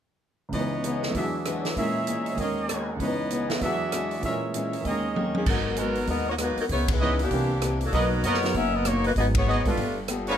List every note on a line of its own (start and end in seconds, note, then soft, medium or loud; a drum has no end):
0.49 1.13 C#2 soft
0.49 1.14 C#3 soft
0.49 kick soft
0.49 open hi-hat soft
0.53 0.73 C#3 soft
0.53 1.13 E3 soft
0.53 0.74 E3 soft
0.53 0.75 B3 soft
0.53 0.75 D#4 soft
0.53 1.15 B4 medium
0.53 1.15 C#5 medium
0.53 1.15 D#5 medium
0.57 1.17 D#4 soft
0.57 1.18 B4 medium
0.84 1.04 C#3 medium
0.84 1.05 E3 medium
0.84 1.05 B3 medium
0.84 1.05 D#4 medium
0.84 0.98 B5 soft
0.84 closed hi-hat soft
0.91 1.04 G#5 soft
1.00 1.10 F#5 soft
1.00 snare soft
1.07 1.75 E2 soft
1.07 1.14 E5 medium
1.14 1.75 E3 soft
1.14 1.35 E3 soft
1.14 1.78 F#3 soft
1.14 1.36 G#3 soft
1.14 1.36 D4 soft
1.14 1.77 F#4 medium
1.14 1.76 G#4 medium
1.14 1.77 D5 medium
1.14 1.76 E5 medium
1.14 kick soft
1.14 open hi-hat soft
1.18 1.79 D4 soft
1.18 1.37 F#4 soft
1.22 1.80 G#4 medium
1.45 1.66 E3 medium
1.45 1.67 G#3 medium
1.45 1.67 D4 medium
1.45 1.67 F#4 medium
1.45 1.70 B4 soft
1.45 cross-stick medium
1.45 closed hi-hat soft
1.62 1.83 C#5 soft
1.62 snare soft
1.62 open hi-hat soft
1.76 2.38 A#2 soft
1.76 1.97 A#2 soft
1.76 2.38 E3 soft
1.76 1.98 E3 soft
1.76 2.38 G#3 soft
1.76 1.98 G#3 soft
1.76 2.39 C#4 soft
1.76 2.39 G#4 medium
1.76 2.39 A#4 medium
1.76 2.39 A#4 soft
1.76 2.39 C#5 medium
1.76 2.39 E5 medium
1.76 kick soft
1.76 open hi-hat soft
1.81 1.99 C#4 soft
2.07 2.28 A#2 medium
2.07 2.28 E3 medium
2.07 2.29 G#3 medium
2.07 2.29 C#4 medium
2.07 2.21 G#5 soft
2.07 closed hi-hat soft
2.17 2.29 E5 soft
2.17 2.29 A#5 soft
2.24 2.34 D#5 soft
2.24 2.34 C#6 soft
2.24 open hi-hat soft
2.32 2.98 D#2 soft
2.32 2.42 C#5 soft
2.32 2.42 D#6 soft
2.37 2.99 D#3 soft
2.37 2.59 D#3 soft
2.37 3.01 G#3 soft
2.37 2.59 A#3 soft
2.37 2.60 C#4 medium
2.37 3.01 G#4 medium
2.37 3.01 A#4 medium
2.37 2.99 C#5 medium
2.37 2.99 D#5 medium
2.37 kick soft
2.37 open hi-hat soft
2.41 3.02 C#4 soft
2.41 2.60 G#4 medium
2.41 3.03 A#4 soft
2.69 2.89 D#3 medium
2.69 2.90 A#3 medium
2.69 2.90 C#4 medium
2.69 2.91 G#4 medium
2.69 2.87 A#5 soft
2.69 cross-stick medium
2.69 closed hi-hat soft
2.80 2.95 G#5 soft
2.91 3.06 F#5 soft
2.96 3.60 C#2 soft
2.96 3.61 C#3 soft
2.96 3.20 C#3 soft
2.96 kick soft
2.96 open hi-hat soft
3.00 3.21 E3 soft
3.00 3.61 E3 soft
3.00 3.21 B3 medium
3.00 3.22 D#4 medium
3.00 3.62 B4 medium
3.00 3.62 C#5 medium
3.00 3.62 D#5 medium
3.05 3.64 D#4 soft
3.05 3.65 B4 soft
3.30 3.52 C#3 medium
3.30 3.52 E3 medium
3.30 3.52 B3 medium
3.30 3.53 D#4 medium
3.30 3.45 C#5 soft
3.30 3.45 B5 soft
3.30 closed hi-hat soft
3.39 3.52 D#5 soft
3.39 3.51 G#5 soft
3.48 3.57 E5 soft
3.48 3.57 F#5 soft
3.48 snare soft
3.48 open hi-hat soft
3.55 3.61 E5 soft
3.55 3.66 F#5 soft
3.61 4.23 E2 soft
3.61 3.82 E3 soft
3.61 4.20 E3 soft
3.61 4.24 F#3 soft
3.61 3.83 G#3 soft
3.61 3.83 D4 medium
3.61 4.25 D4 soft
3.61 4.24 F#4 medium
3.61 4.22 G#4 medium
3.61 4.24 D5 medium
3.61 4.23 E5 medium
3.61 kick soft
3.61 open hi-hat soft
3.65 3.84 F#4 medium
3.65 4.26 G#4 medium
3.92 4.13 E3 medium
3.92 4.14 G#3 medium
3.92 4.14 D4 medium
3.92 4.14 F#4 medium
3.92 cross-stick medium
3.92 closed hi-hat soft
4.11 open hi-hat soft
4.19 4.83 A#2 soft
4.19 4.84 E3 soft
4.19 kick soft
4.19 open hi-hat soft
4.23 4.44 A#2 medium
4.23 4.45 E3 soft
4.23 4.85 G#3 soft
4.23 4.45 G#3 soft
4.23 4.84 G#4 medium
4.23 4.84 A#4 medium
4.23 4.84 C#5 medium
4.23 4.85 E5 medium
4.28 4.46 C#4 soft
4.28 4.87 C#4 soft
4.28 4.88 A#4 soft
4.54 4.75 A#2 medium
4.54 4.75 E3 medium
4.54 4.76 G#3 medium
4.54 4.76 C#4 medium
4.54 closed hi-hat soft
4.73 open hi-hat soft
4.81 5.45 D#2 soft
4.81 5.46 D#3 soft
4.85 5.06 D#3 soft
4.85 5.47 G#3 soft
4.85 5.06 A#3 soft
4.85 5.07 C#4 medium
4.85 5.47 G#4 medium
4.85 5.07 G#4 soft
4.85 5.47 A#4 medium
4.85 5.47 C#5 medium
4.85 5.47 D#5 medium
4.85 kick soft
4.85 open hi-hat soft
4.90 5.49 C#4 soft
4.90 5.50 A#4 soft
5.16 5.36 D#3 medium
5.16 5.37 A#3 medium
5.16 5.37 C#4 medium
5.16 5.37 G#4 medium
5.16 high tom soft
5.35 5.47 D#3 medium
5.35 5.47 A#3 medium
5.35 5.47 C#4 medium
5.35 5.47 G#4 medium
5.35 high tom medium
5.46 6.05 G#1 medium
5.46 5.77 F#3 medium
5.46 5.67 G#3 soft
5.46 5.68 B3 soft
5.46 5.77 B3 medium
5.46 5.77 D#4 medium
5.46 5.68 F#4 soft
5.46 5.76 A#4 medium
5.46 5.68 A#4 soft
5.46 kick medium
5.46 crash medium
5.76 6.09 F#3 medium
5.76 5.95 G#3 medium
5.76 5.98 G#3 medium
5.76 5.95 B3 soft
5.76 5.98 B3 medium
5.76 6.09 D#4 medium
5.76 5.95 F#4 soft
5.76 5.98 F#4 medium
5.76 5.95 A#4 medium
5.76 6.09 A#4 medium
5.76 5.99 A#4 medium
5.76 6.09 B4 medium
5.76 closed hi-hat soft
5.95 open hi-hat soft
6.07 6.54 D#2 medium
6.07 6.28 G#3 soft
6.07 6.29 B3 soft
6.07 6.28 B3 medium
6.07 6.29 F#4 soft
6.07 6.27 F#4 medium
6.07 6.29 A#4 soft
6.07 6.27 A#4 medium
6.07 6.27 D#5 medium
6.07 kick soft
6.07 open hi-hat soft
6.29 6.34 A#3 medium
6.29 6.35 D#4 medium
6.29 6.35 F#4 medium
6.29 6.34 C#5 medium
6.38 6.58 F#3 medium
6.38 6.59 G#3 medium
6.38 6.58 A#3 medium
6.38 6.59 B3 medium
6.38 6.58 D#4 medium
6.38 6.60 F#4 medium
6.38 6.60 A#4 medium
6.38 6.58 B4 medium
6.38 cross-stick medium
6.38 closed hi-hat medium
6.57 6.65 F#3 medium
6.57 6.65 B3 medium
6.57 6.66 D#4 medium
6.57 6.65 A#4 medium
6.57 muted upright bass stroke soft
6.57 open hi-hat soft
6.69 7.28 C#2 medium
6.69 6.90 C#3 soft
6.69 6.90 E3 soft
6.69 6.91 B3 soft
6.69 6.89 B3 medium
6.69 6.91 D#4 soft
6.69 6.89 E4 medium
6.69 6.89 G#4 medium
6.69 6.89 C#5 medium
6.69 kick soft
6.69 open hi-hat soft
6.88 7.21 G#3 medium
6.88 7.21 D#4 medium
6.88 7.21 E4 medium
6.88 7.21 B4 medium
6.88 kick medium
6.88 ride medium
7.00 7.21 C#3 medium
7.00 7.21 E3 medium
7.00 7.18 E3 soft
7.00 7.21 B3 medium
7.00 7.18 C#4 soft
7.00 7.18 D#4 soft
7.00 7.22 D#4 medium
7.00 7.13 E4 medium
7.00 7.13 B4 medium
7.00 7.19 B4 soft
7.00 7.13 C#5 medium
7.00 7.13 D#5 medium
7.19 7.79 E3 medium
7.19 7.79 A#3 medium
7.19 7.79 D4 medium
7.19 7.79 G4 medium
7.19 open hi-hat soft
7.31 7.89 C2 medium
7.31 7.52 C3 soft
7.31 7.49 E3 medium
7.31 7.52 E3 soft
7.31 7.53 A#3 soft
7.31 7.49 C4 soft
7.31 7.49 D4 soft
7.31 7.49 A#4 medium
7.31 kick soft
7.31 open hi-hat soft
7.35 7.53 D4 soft
7.62 7.83 C3 medium
7.62 7.83 E3 medium
7.62 7.84 A#3 medium
7.62 7.84 D4 medium
7.62 cross-stick medium
7.62 closed hi-hat soft
7.81 7.94 F#3 medium
7.81 7.95 A#3 medium
7.81 7.95 D4 medium
7.81 7.94 A4 medium
7.81 open hi-hat soft
7.92 8.21 B1 medium
7.92 8.14 B2 soft
7.92 8.10 F#3 medium
7.92 8.14 F#3 soft
7.92 8.25 F#3 medium
7.92 8.15 A#3 soft
7.92 8.11 B3 medium
7.92 8.11 D#4 medium
7.92 8.25 D#4 medium
7.92 8.06 F#4 medium
7.92 8.06 A#4 medium
7.92 8.11 A#4 medium
7.92 8.25 A#4 medium
7.92 8.06 B4 medium
7.92 8.25 B4 medium
7.92 8.06 D#5 medium
7.92 kick soft
7.92 open hi-hat soft
7.97 8.15 D#4 soft
8.23 8.52 F#2 medium
8.23 8.45 B2 medium
8.23 8.45 F#3 medium
8.23 8.45 A#3 medium
8.23 8.54 B3 medium
8.23 8.37 F#4 medium
8.23 8.54 F#4 medium
8.23 8.37 A#4 medium
8.23 8.54 A#4 medium
8.23 8.37 B4 medium
8.23 8.54 C#5 medium
8.23 8.37 D#5 medium
8.23 closed hi-hat soft
8.27 8.46 D#4 medium
8.34 snare soft
8.43 8.54 F#3 medium
8.43 8.54 B3 medium
8.43 8.54 D#4 medium
8.43 8.54 A#4 medium
8.43 snare soft
8.43 open hi-hat soft
8.54 9.13 F#1 medium
8.54 8.75 B2 soft
8.54 8.76 F#3 soft
8.54 8.76 A#3 soft
8.54 8.75 C#4 medium
8.54 8.74 F#4 medium
8.54 8.74 A#4 medium
8.54 8.75 E5 loud
8.54 kick soft
8.54 open hi-hat soft
8.59 8.77 D#4 soft
8.75 8.86 B3 medium
8.75 8.86 F#4 medium
8.75 8.86 A#4 medium
8.75 8.86 D#5 medium
8.85 9.06 B2 medium
8.85 9.07 F#3 medium
8.85 9.07 A#3 medium
8.85 9.06 A#3 medium
8.85 9.06 D#4 medium
8.85 9.07 D#4 medium
8.85 9.06 F#4 medium
8.85 9.06 C#5 medium
8.85 cross-stick medium
8.85 closed hi-hat medium
9.04 9.12 F#3 medium
9.04 9.12 A#3 medium
9.04 9.12 D#4 medium
9.04 9.12 B4 medium
9.04 open hi-hat soft
9.16 9.62 G#1 medium
9.16 9.37 G#2 soft
9.16 9.34 F#3 medium
9.16 9.37 F#3 soft
9.16 9.34 B3 soft
9.16 9.27 B3 medium
9.16 9.38 B3 soft
9.16 9.34 D#4 soft
9.16 9.38 D#4 soft
9.16 9.27 F#4 medium
9.16 9.26 G#4 medium
9.16 9.34 G#4 medium
9.16 9.27 D#5 medium
9.16 kick soft
9.16 open hi-hat soft
9.35 9.65 B3 medium
9.35 9.65 F#4 medium
9.35 9.65 G#4 medium
9.35 9.65 C#5 medium
9.35 kick medium
9.35 ride medium
9.47 9.67 G#2 medium
9.47 9.68 F#3 medium
9.47 9.68 B3 medium
9.47 9.68 D#4 medium
9.47 9.60 F#4 medium
9.47 9.60 G#4 medium
9.47 9.60 B4 medium
9.47 9.60 D#5 medium
9.65 9.77 G3 medium
9.65 9.98 A3 medium
9.65 9.77 B3 medium
9.65 9.99 D4 medium
9.65 9.77 F4 medium
9.65 9.99 F4 medium
9.65 9.77 A4 medium
9.65 9.98 B4 medium
9.65 kick soft
9.65 open hi-hat soft
9.77 10.36 G1 medium
9.77 9.98 G3 soft
9.77 9.98 B3 soft
9.77 9.99 F4 soft
9.77 kick soft
9.77 open hi-hat soft
9.81 10.00 A4 soft
10.08 10.29 G3 medium
10.08 10.29 B3 medium
10.08 10.30 F4 medium
10.08 10.30 A4 medium
10.08 cross-stick medium
10.08 closed hi-hat medium
10.27 10.34 A3 medium
10.27 10.34 D4 medium
10.27 10.34 F4 medium
10.27 10.36 F#4 medium
10.27 10.36 G#4 medium
10.27 10.36 A#4 medium
10.27 10.34 B4 medium
10.27 10.36 C#5 medium
10.27 open hi-hat soft